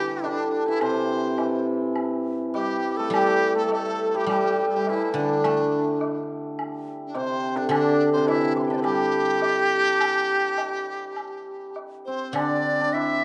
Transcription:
0.00 0.23 D3 medium
0.00 0.32 E3 medium
0.00 2.53 G3 medium
0.00 0.25 G4 loud
0.24 0.74 D3 medium
0.24 0.68 D4 medium
0.24 low woodblock soft
0.67 1.38 E3 medium
0.67 0.83 E4 medium
0.81 5.24 C3 medium
0.81 1.67 C5 medium
0.81 high woodblock medium
1.38 4.90 E3 medium
1.38 high woodblock soft
1.38 low woodblock soft
1.96 high woodblock soft
2.54 3.05 G3 medium
2.54 2.98 G4 medium
2.54 low woodblock soft
2.97 3.55 A3 medium
2.97 3.12 A4 medium
3.10 4.25 G3 medium
3.10 3.61 G3 medium
3.10 3.54 G4 medium
3.10 high woodblock medium
3.55 3.68 A3 medium
3.55 3.71 A4 medium
3.68 8.12 A3 medium
3.68 low woodblock soft
3.73 4.11 A4 medium
4.11 4.29 G3 medium
4.11 4.18 A4 medium
4.16 4.28 G4 medium
4.26 6.00 G3 medium
4.26 4.35 G3 medium
4.26 4.66 G4 medium
4.26 high woodblock soft
4.35 4.43 G3 medium
4.43 4.49 G3 medium
4.49 4.59 G3 medium
4.59 4.67 G3 medium
4.67 4.76 G3 soft
4.67 4.76 A4 medium
4.75 8.84 G3 medium
4.75 4.91 G4 medium
4.87 5.12 E3 medium
4.87 5.17 E4 medium
4.87 low woodblock soft
5.12 6.85 D3 medium
5.12 5.24 E3 soft
5.12 6.30 D4 medium
5.18 7.21 D3 medium
5.44 6.58 A3 soft
5.44 high woodblock medium
6.01 low woodblock soft
6.59 high woodblock medium
7.07 7.19 D4 medium
7.15 7.62 C3 medium
7.15 7.58 C5 medium
7.15 low woodblock soft
7.56 7.69 D3 medium
7.56 7.70 D4 medium
7.69 9.41 D3 medium
7.69 8.21 D3 medium
7.69 8.10 D4 medium
7.69 high woodblock medium
8.13 8.76 C3 medium
8.13 8.30 C5 medium
8.28 8.76 E3 medium
8.28 8.55 E4 medium
8.28 low woodblock soft
8.56 8.63 C6 soft
8.56 8.58 D6 soft
8.64 8.69 G5 medium
8.64 8.66 A5 soft
8.69 12.14 D3 medium
8.69 8.76 D5 medium
8.69 8.71 E5 medium
8.77 8.81 C5 medium
8.82 13.24 G3 medium
8.82 11.76 G4 loud
8.82 8.86 A4 medium
8.82 high woodblock medium
9.42 low woodblock medium
10.01 high woodblock medium
10.58 high woodblock soft
10.58 low woodblock soft
11.16 high woodblock soft
11.76 low woodblock soft
12.05 13.24 C4 medium
12.05 12.37 C5 medium
12.33 13.24 D3 medium
12.33 12.80 D4 medium
12.33 12.95 D5 medium
12.33 high woodblock medium
12.81 13.24 D4 medium
12.93 13.24 E4 medium
12.93 13.24 E5 medium
12.93 low woodblock soft

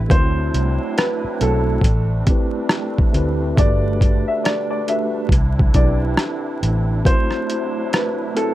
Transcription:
0.00 0.10 C4 medium
0.00 0.12 D4 medium
0.00 0.11 E4 medium
0.00 1.80 E4 medium
0.00 0.12 G4 medium
0.00 0.11 B4 medium
0.09 0.50 D2 loud
0.09 1.82 F#3 medium
0.09 1.07 A3 loud
0.09 1.08 C4 medium
0.09 3.54 C4 medium
0.09 8.54 D4 medium
0.09 1.09 E4 medium
0.09 1.09 F#4 medium
0.09 0.97 C5 medium
0.09 kick loud
0.09 closed hi-hat medium
0.13 1.09 C5 loud
0.54 0.77 C2 medium
0.54 closed hi-hat medium
0.98 1.37 B4 medium
0.98 cross-stick loud
0.98 closed hi-hat medium
1.24 muted fingered electric bass stroke soft
1.39 1.80 B1 medium
1.39 1.83 A3 medium
1.39 1.84 C4 medium
1.39 1.84 E4 medium
1.39 1.85 F#4 medium
1.39 2.07 A4 medium
1.39 closed hi-hat medium
1.43 1.85 A4 medium
1.81 2.22 A1 medium
1.81 5.28 G3 medium
1.81 5.28 A3 medium
1.81 kick medium
1.81 closed hi-hat medium
2.26 2.95 A3 medium
2.26 2.95 C4 medium
2.26 2.96 E4 medium
2.26 2.96 G4 medium
2.26 kick medium
2.26 closed hi-hat medium
2.31 2.97 B4 medium
2.69 cross-stick loud
2.69 closed hi-hat medium
2.98 kick medium
3.12 3.54 D2 medium
3.12 3.48 A3 medium
3.12 3.48 C4 medium
3.12 3.49 E4 medium
3.12 3.49 G4 medium
3.12 closed hi-hat medium
3.17 3.50 B4 loud
3.56 4.23 G1 medium
3.56 5.29 D3 medium
3.56 4.55 A3 loud
3.56 4.56 D4 medium
3.56 4.56 F#4 medium
3.56 4.57 G4 medium
3.56 4.24 D5 loud
3.56 kick loud
3.56 closed hi-hat medium
3.61 4.57 B4 loud
4.01 kick medium
4.01 closed hi-hat medium
4.28 4.45 E5 medium
4.44 4.68 D5 medium
4.44 cross-stick medium
4.44 closed hi-hat medium
4.70 4.88 D5 medium
4.87 5.31 A3 medium
4.87 5.32 D4 medium
4.87 5.32 F#4 medium
4.87 5.33 G4 medium
4.87 5.28 E5 medium
4.87 closed hi-hat medium
4.92 5.33 B4 medium
5.29 5.70 C2 loud
5.29 7.03 D3 medium
5.29 7.04 C4 medium
5.29 7.03 E4 medium
5.29 kick medium
5.29 closed hi-hat medium
5.59 kick medium
5.74 6.15 B1 medium
5.74 6.72 C4 medium
5.74 6.73 D4 medium
5.74 6.73 E4 medium
5.74 6.74 G4 medium
5.74 5.99 D5 medium
5.74 kick medium
5.74 closed hi-hat medium
5.78 6.75 B4 medium
6.17 cross-stick medium
6.17 closed hi-hat medium
6.63 7.02 A1 medium
6.63 closed hi-hat medium
7.04 8.54 C3 medium
7.04 8.54 F#3 medium
7.04 8.03 A3 loud
7.04 8.04 C4 medium
7.04 8.54 E4 medium
7.04 8.04 E4 medium
7.04 8.05 F#4 medium
7.04 7.89 C5 medium
7.04 kick loud
7.04 closed hi-hat medium
7.09 8.05 C5 loud
7.31 cross-stick soft
7.50 closed hi-hat medium
7.93 8.33 B4 medium
7.93 cross-stick loud
7.93 closed hi-hat medium
8.34 8.54 A3 medium
8.34 8.54 C4 medium
8.34 8.54 E4 medium
8.34 8.54 F#4 medium
8.34 8.54 A4 medium
8.34 closed hi-hat medium
8.39 8.54 B4 medium

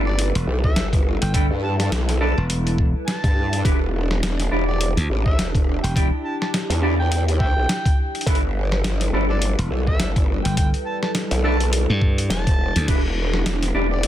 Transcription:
0.00 0.32 G1 loud
0.00 3.61 G3 medium
0.00 8.23 E4 medium
0.00 3.61 A4 medium
0.00 3.61 B4 medium
0.06 0.25 D5 medium
0.19 closed hi-hat medium
0.35 0.46 E1 loud
0.35 closed hi-hat soft
0.47 0.74 B1 loud
0.64 0.83 E5 loud
0.64 kick medium
0.76 1.19 G1 loud
0.76 snare loud
0.76 closed hi-hat medium
0.93 kick loud
0.93 closed hi-hat soft
1.22 1.48 G1 loud
1.22 1.30 G5 medium
1.22 closed hi-hat medium
1.34 1.46 D4 loud
1.34 1.46 E4 medium
1.34 1.46 A4 medium
1.34 1.46 D5 loud
1.34 1.45 G5 medium
1.34 kick loud
1.34 closed hi-hat medium
1.50 1.90 G2 loud
1.63 1.74 A5 medium
1.80 1.88 A5 medium
1.80 snare soft
1.80 closed hi-hat soft
1.92 2.35 B1 medium
1.92 snare loud
1.92 closed hi-hat medium
2.09 snare soft
2.09 closed hi-hat medium
2.21 2.32 D4 medium
2.21 2.32 E4 medium
2.21 2.32 A4 medium
2.21 2.32 D5 loud
2.21 2.42 A5 medium
2.38 2.93 E1 loud
2.50 closed hi-hat medium
2.67 closed hi-hat soft
2.78 kick medium
3.07 3.65 A5 loud
3.07 snare loud
3.07 closed hi-hat medium
3.24 3.63 G2 loud
3.24 kick loud
3.24 closed hi-hat soft
3.53 closed hi-hat soft
3.64 4.49 E1 loud
3.64 3.76 D4 loud
3.64 8.23 D4 medium
3.64 3.76 E4 medium
3.64 3.76 G4 medium
3.64 8.23 G4 medium
3.64 3.76 B4 loud
3.64 kick loud
3.64 closed hi-hat medium
4.11 snare medium
4.23 snare loud
4.23 closed hi-hat medium
4.40 snare soft
4.40 closed hi-hat medium
4.51 4.95 E1 loud
4.51 4.63 D4 medium
4.51 4.63 E4 medium
4.51 4.63 G4 medium
4.51 4.63 D5 medium
4.68 4.87 D5 medium
4.81 closed hi-hat medium
4.97 5.07 D2 medium
4.97 closed hi-hat soft
5.10 5.36 A1 loud
5.26 5.45 E5 medium
5.26 kick medium
5.38 5.81 E1 loud
5.38 snare loud
5.38 closed hi-hat medium
5.55 kick loud
5.55 closed hi-hat soft
5.83 6.10 E1 loud
5.83 5.91 G5 medium
5.83 closed hi-hat medium
5.95 6.07 D4 loud
5.95 6.07 E4 medium
5.95 6.07 G4 medium
5.95 6.07 D5 loud
5.95 6.06 G5 medium
5.95 kick loud
5.95 closed hi-hat medium
6.25 6.35 A5 medium
6.41 6.49 A5 medium
6.41 snare medium
6.54 snare loud
6.54 closed hi-hat medium
6.70 7.29 E2 loud
6.70 snare soft
6.70 closed hi-hat soft
6.82 6.94 D4 medium
6.82 6.94 E4 medium
6.82 6.94 G4 medium
6.82 6.94 D5 loud
6.99 7.07 G5 medium
7.11 7.22 G5 medium
7.11 closed hi-hat medium
7.28 7.54 D#2 loud
7.28 closed hi-hat soft
7.40 7.47 E5 medium
7.40 7.98 G5 loud
7.40 kick medium
7.56 7.67 B1 loud
7.69 snare loud
7.69 closed hi-hat medium
7.86 kick loud
7.86 closed hi-hat soft
8.15 closed hi-hat soft
8.21 closed hi-hat soft
8.26 9.11 G1 loud
8.26 12.85 G3 medium
8.26 8.38 D4 loud
8.26 8.38 E4 loud
8.26 14.07 E4 medium
8.26 8.38 A4 medium
8.26 12.85 A4 medium
8.26 8.38 B4 loud
8.26 12.85 B4 medium
8.26 kick loud
8.26 closed hi-hat medium
8.35 closed hi-hat soft
8.72 snare medium
8.84 snare loud
8.84 closed hi-hat medium
9.01 snare soft
9.01 closed hi-hat medium
9.13 9.56 G1 loud
9.13 9.25 D4 medium
9.13 9.25 E4 medium
9.13 9.25 A4 medium
9.13 9.25 D5 medium
9.30 9.37 A4 medium
9.30 9.49 D5 loud
9.42 closed hi-hat medium
9.59 9.69 E1 loud
9.59 closed hi-hat soft
9.70 9.98 B1 medium
9.87 10.06 E5 medium
9.87 kick medium
10.00 10.43 G1 loud
10.00 snare loud
10.00 closed hi-hat medium
10.16 kick loud
10.16 closed hi-hat soft
10.44 10.71 G1 loud
10.44 10.53 G5 medium
10.44 closed hi-hat medium
10.57 10.68 G5 medium
10.57 kick loud
10.57 closed hi-hat medium
10.74 closed hi-hat soft
10.86 10.97 A5 medium
11.03 11.11 A5 medium
11.03 snare medium
11.15 snare loud
11.15 closed hi-hat medium
11.31 11.87 B1 loud
11.31 snare soft
11.31 closed hi-hat medium
11.44 11.55 D4 medium
11.44 11.55 E4 medium
11.44 11.55 A4 medium
11.44 11.55 D5 loud
11.44 11.51 E5 medium
11.44 11.65 A5 loud
11.60 closed hi-hat soft
11.73 closed hi-hat medium
11.90 12.29 G2 loud
12.02 kick medium
12.18 closed hi-hat soft
12.30 12.73 E1 loud
12.30 12.88 A5 loud
12.30 snare loud
12.30 closed hi-hat medium
12.47 kick loud
12.47 closed hi-hat soft
12.76 12.86 D2 loud
12.76 closed hi-hat medium
12.88 13.73 E1 loud
12.88 12.99 D4 loud
12.88 14.07 D4 medium
12.88 12.99 E4 medium
12.88 12.99 G4 medium
12.88 14.07 G4 medium
12.88 12.99 B4 loud
12.88 kick loud
12.88 closed hi-hat medium
12.88 crash medium
13.34 snare medium
13.46 snare loud
13.46 closed hi-hat medium
13.63 snare soft
13.63 closed hi-hat medium
13.74 14.07 E1 loud
13.74 13.86 D4 medium
13.74 13.86 E4 medium
13.74 13.86 G4 medium
13.74 13.86 D5 medium
13.92 14.07 D5 medium
14.03 closed hi-hat medium

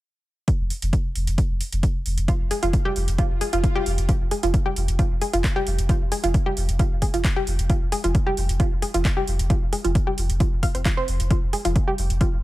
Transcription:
0.48 kick loud
0.48 closed hi-hat medium
0.60 0.70 F1 medium
0.70 open hi-hat loud
0.82 0.93 F1 medium
0.82 closed hi-hat medium
0.93 kick loud
0.93 closed hi-hat medium
1.15 1.27 F1 medium
1.15 open hi-hat medium
1.27 1.38 F1 medium
1.27 closed hi-hat medium
1.38 kick loud
1.38 closed hi-hat medium
1.50 1.60 F1 medium
1.61 open hi-hat loud
1.72 1.83 F1 medium
1.72 closed hi-hat medium
1.83 kick loud
1.83 closed hi-hat medium
2.06 2.17 F1 loud
2.06 open hi-hat medium
2.18 2.28 F1 medium
2.18 closed hi-hat medium
2.28 2.35 F4 medium
2.28 kick loud
2.28 closed hi-hat medium
2.40 2.51 F1 medium
2.51 2.58 G#4 medium
2.51 open hi-hat loud
2.63 2.73 F1 medium
2.63 2.69 F4 medium
2.63 closed hi-hat medium
2.73 kick loud
2.73 closed hi-hat medium
2.85 2.89 G4 loud
2.96 3.07 F1 loud
2.96 open hi-hat medium
3.08 3.18 F1 medium
3.08 closed hi-hat medium
3.18 3.25 F4 medium
3.18 kick loud
3.18 closed hi-hat medium
3.18 swell medium
3.30 3.41 F1 medium
3.41 3.48 G#4 medium
3.41 open hi-hat loud
3.53 3.63 F1 medium
3.53 3.59 F4 medium
3.53 closed hi-hat medium
3.64 kick loud
3.64 closed hi-hat medium
3.75 3.79 G4 loud
3.86 3.97 F1 loud
3.86 open hi-hat loud
3.98 4.08 F1 medium
3.98 closed hi-hat medium
4.09 4.16 F4 medium
4.09 kick loud
4.09 closed hi-hat medium
4.21 4.31 F1 medium
4.31 4.38 G#4 medium
4.31 open hi-hat loud
4.43 4.54 F1 medium
4.43 4.49 F4 medium
4.43 closed hi-hat medium
4.54 kick loud
4.54 closed hi-hat medium
4.66 4.69 G4 loud
4.76 4.88 F1 loud
4.76 open hi-hat medium
4.88 4.99 F1 medium
4.88 closed hi-hat medium
4.99 5.06 F4 medium
4.99 kick loud
4.99 closed hi-hat medium
5.11 5.21 F1 medium
5.21 5.28 G#4 medium
5.21 open hi-hat loud
5.33 5.44 F1 medium
5.33 5.40 F4 medium
5.33 closed hi-hat medium
5.44 kick loud
5.44 clap loud
5.44 closed hi-hat medium
5.56 5.60 G4 loud
5.67 5.78 F1 loud
5.67 open hi-hat medium
5.79 5.89 F1 medium
5.79 closed hi-hat medium
5.89 5.96 F4 medium
5.89 kick loud
5.89 closed hi-hat medium
6.01 6.12 F1 medium
6.12 6.19 G#4 medium
6.12 open hi-hat loud
6.24 6.34 F1 medium
6.24 6.30 F4 medium
6.24 closed hi-hat medium
6.34 kick loud
6.34 closed hi-hat medium
6.46 6.50 G4 loud
6.57 6.68 F1 medium
6.57 open hi-hat medium
6.69 6.79 F1 medium
6.69 closed hi-hat medium
6.79 6.86 F4 medium
6.79 kick loud
6.79 closed hi-hat medium
6.91 7.02 F1 medium
7.02 7.09 G#4 medium
7.02 kick medium
7.02 open hi-hat loud
7.14 7.24 F1 medium
7.14 7.20 F4 medium
7.14 closed hi-hat medium
7.24 kick loud
7.24 clap loud
7.24 closed hi-hat medium
7.36 7.40 G4 loud
7.47 7.58 F1 loud
7.47 open hi-hat loud
7.59 7.69 F1 medium
7.59 closed hi-hat medium
7.70 7.77 F4 medium
7.70 kick loud
7.70 closed hi-hat medium
7.81 7.92 F1 medium
7.92 7.99 G#4 medium
7.92 open hi-hat loud
8.04 8.14 F1 medium
8.04 8.10 F4 medium
8.04 closed hi-hat medium
8.15 kick loud
8.15 closed hi-hat medium
8.27 8.30 G4 loud
8.37 8.49 F1 loud
8.37 open hi-hat medium
8.49 8.60 F1 medium
8.49 closed hi-hat medium
8.60 8.67 F4 medium
8.60 kick loud
8.60 closed hi-hat medium
8.72 8.82 F1 medium
8.82 8.89 G#4 medium
8.82 open hi-hat loud
8.94 9.05 F1 medium
8.94 9.00 F4 medium
8.94 closed hi-hat medium
9.05 kick loud
9.05 clap loud
9.05 closed hi-hat medium
9.17 9.21 G4 loud
9.27 9.39 F1 loud
9.27 open hi-hat medium
9.39 9.50 F1 medium
9.39 closed hi-hat medium
9.50 9.57 F4 medium
9.50 kick loud
9.50 closed hi-hat medium
9.62 9.72 F1 medium
9.73 9.80 G#4 medium
9.73 open hi-hat loud
9.84 9.95 F1 medium
9.84 9.91 F4 medium
9.84 closed hi-hat medium
9.95 kick loud
9.95 closed hi-hat medium
10.07 10.11 G4 loud
10.18 10.29 F1 medium
10.18 open hi-hat medium
10.30 10.40 F1 medium
10.30 closed hi-hat medium
10.40 10.47 F4 medium
10.40 kick loud
10.40 closed hi-hat medium
10.52 10.63 F1 medium
10.63 10.70 F5 medium
10.63 kick medium
10.63 open hi-hat loud
10.75 10.85 F1 medium
10.75 10.81 C5 medium
10.75 closed hi-hat medium
10.85 10.92 F4 medium
10.85 kick loud
10.85 clap loud
10.85 closed hi-hat medium
10.97 11.03 C5 loud
11.08 11.19 F1 loud
11.08 open hi-hat medium
11.20 11.30 F1 medium
11.20 closed hi-hat medium
11.31 11.37 F4 medium
11.31 kick loud
11.31 closed hi-hat medium
11.42 11.53 F1 medium
11.53 11.60 G#4 medium
11.53 open hi-hat loud
11.65 11.75 F1 medium
11.65 11.71 F4 medium
11.65 closed hi-hat medium
11.76 kick loud
11.76 closed hi-hat medium
11.88 11.91 G4 loud
11.98 12.10 F1 loud
11.98 open hi-hat medium
12.10 12.21 F1 medium
12.10 closed hi-hat medium
12.21 12.28 F4 medium
12.21 kick loud
12.21 closed hi-hat medium
12.33 12.43 F1 medium

